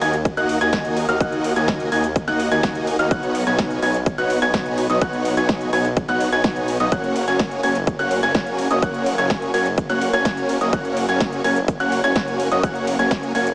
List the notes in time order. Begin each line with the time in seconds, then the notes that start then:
0.01 D#2 A#3 D#4 F#4 D#5 G#5 G#6, open hi-hat, ride
0.13 closed hi-hat
0.25 kick, closed hi-hat
0.37 D#2 A#3 D#4 F#4 D#5 F#5 F#6, closed hi-hat
0.49 open hi-hat, ride
0.61 D#2 A#3 D#4 F#4 D#5 G#5 G#6, closed hi-hat
0.73 D#2 A#3, kick, snare, closed hi-hat
0.85 closed hi-hat
0.97 open hi-hat, ride
1.09 D#2 A#3 D#4 F#4 D#5 F5 F6, closed hi-hat
1.20 D#2 A#3 D#4 F#4 D#5 F#5 F#6, kick, closed hi-hat
1.32 closed hi-hat
1.44 open hi-hat, ride
1.56 D#2 A#3 D#4 F#4 D#5 G#5 G#6, closed hi-hat
1.68 kick, snare, closed hi-hat
1.80 closed hi-hat
1.92 D#2 A#3 D#4 F#4 D#5 G#5 G#6, open hi-hat, ride
2.04 closed hi-hat
2.16 kick, closed hi-hat
2.28 D#2 A#3 D#4 F#4 D#5 F#5 F#6, snare, closed hi-hat
2.40 open hi-hat, ride
2.51 D#2 A#3 D#4 F#4 D#5 G#5 G#6, closed hi-hat
2.63 D#2, kick, snare, closed hi-hat
2.75 closed hi-hat
2.87 open hi-hat, ride
2.99 D#2 A#3 D#4 F#4 D#5 F5 F6, closed hi-hat
3.11 B1 B3 D#4 F#4 C#5 F#5 F#6, kick, closed hi-hat
3.23 closed hi-hat
3.35 open hi-hat, ride
3.47 B1 B3 D#4 F#4 C#5 G#5 G#6, closed hi-hat
3.59 kick, snare, closed hi-hat
3.71 closed hi-hat
3.82 B1 B3 D#4 F#4 C#5 G#5 G#6, open hi-hat, ride
3.94 closed hi-hat
4.06 kick, closed hi-hat
4.18 B1 B3 D#4 F#4 C#5 F#5 F#6, closed hi-hat
4.30 open hi-hat, ride
4.42 B1 B3 D#4 F#4 C#5 G#5 G#6, closed hi-hat
4.54 B1 B3 F#4 C#5 G#5, kick, snare, closed hi-hat
4.66 closed hi-hat
4.78 open hi-hat, ride
4.90 B1 B3 D#4 F#4 C#5 D#5 D#6, closed hi-hat
5.01 B1 C#5 F#6, kick, closed hi-hat
5.13 closed hi-hat
5.25 open hi-hat, ride
5.37 B1 B3 D#4 F#4 C#5 G#5 G#6, closed hi-hat
5.49 kick, snare, closed hi-hat
5.61 closed hi-hat
5.73 B1 B3 D#4 F#4 C#5 G#5 G#6, open hi-hat, ride
5.85 closed hi-hat
5.97 kick, closed hi-hat
6.08 B1 B3 D#4 F#4 C#5 F#5 F#6, snare, closed hi-hat
6.20 open hi-hat, ride
6.32 B1 B3 D#4 F#4 C#5 G#5 G#6, closed hi-hat
6.44 B1 B3, kick, snare, closed hi-hat
6.56 closed hi-hat
6.68 open hi-hat, ride
6.80 B1 B3 D#4 F#4 C#5 D#5 D#6, closed hi-hat
6.92 F#1 A#3 C#4 F#4 C#5 F#5 F#6, kick, closed hi-hat
7.04 closed hi-hat
7.16 open hi-hat, ride
7.28 F#1 A#3 C#4 F#4 C#5 G#5 G#6, closed hi-hat
7.39 kick, snare, closed hi-hat
7.51 closed hi-hat
7.63 F#1 A#3 C#4 F#4 C#5 G#5 G#6, open hi-hat, ride
7.75 closed hi-hat
7.87 kick, closed hi-hat
7.99 F#1 A#3 C#4 F#4 C#5 F#5 F#6, closed hi-hat
8.11 open hi-hat, ride
8.23 F#1 A#3 C#4 F#4 C#5 G#5 G#6, closed hi-hat
8.35 F#1 A#3 F#4, kick, snare, closed hi-hat
8.47 closed hi-hat
8.59 open hi-hat, ride
8.70 F#1 A#3 C#4 F#4 C#5 D#5 D#6, closed hi-hat
8.82 F#1 A#3 C#4 F#4 C#5 F#5 F#6, kick, closed hi-hat
8.94 closed hi-hat
9.06 open hi-hat, ride
9.18 F#1 A#3 C#4 F#4 C#5 G#5 G#6, closed hi-hat
9.30 kick, snare, closed hi-hat
9.42 closed hi-hat
9.54 F#1 A#3 C#4 F#4 C#5 G#5 G#6, open hi-hat, ride
9.66 closed hi-hat
9.78 kick, closed hi-hat
9.89 F#1 A#3 C#4 F#4 C#5 F#5 F#6, snare, closed hi-hat
10.01 open hi-hat, ride
10.13 F#1 A#3 C#4 F#4 C#5 G#5 G#6, closed hi-hat
10.25 F#1 A#3 C#4 F#4 C#5, kick, snare, closed hi-hat
10.37 closed hi-hat
10.49 open hi-hat, ride
10.61 F#1 A#3 C#4 F#4 C#5 D#5 D#6, closed hi-hat
10.73 F#1 A#3 C#4 F#4 C#5 F#5 F#6, kick, closed hi-hat
10.85 closed hi-hat
10.97 open hi-hat, ride
11.09 F#1 A#3 C#4 F#4 C#5 G#5 G#6, closed hi-hat
11.20 kick, snare, closed hi-hat
11.32 closed hi-hat
11.44 F#1 A#3 C#4 F#4 C#5 G#5 G#6, open hi-hat, ride
11.56 closed hi-hat
11.68 kick, closed hi-hat
11.80 F#1 A#3 C#4 F#4 C#5 F#5 F#6, closed hi-hat
11.92 open hi-hat, ride
12.04 F#1 A#3 C#4 F#4 C#5 G#5 G#6, closed hi-hat
12.16 F#1 C#5 G#5, kick, snare, closed hi-hat
12.28 closed hi-hat
12.40 open hi-hat, ride
12.51 F#1 A#3 C#4 F#4 C#5 D#5 D#6, closed hi-hat
12.63 F#1 A#3 C#4 F#4 C#5 F#5 F#6, kick, closed hi-hat
12.75 closed hi-hat
12.87 open hi-hat, ride
12.99 F#1 A#3 C#4 F#4 C#5 G#5 G#6, closed hi-hat
13.11 kick, snare, closed hi-hat
13.23 closed hi-hat
13.35 F#1 A#3 C#4 F#4 C#5 G#5 G#6, open hi-hat, ride
13.47 closed hi-hat